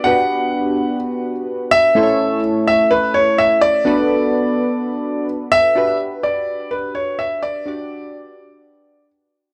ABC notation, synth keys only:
X:1
M:4/4
L:1/8
Q:1/4=126
K:Glyd
V:1 name="Synth keys"
[B,DFGB]8 | [A,CEA=c^c]8 | [B,DFAB]8 | [DFGB]8 |
[DFGd]8 |]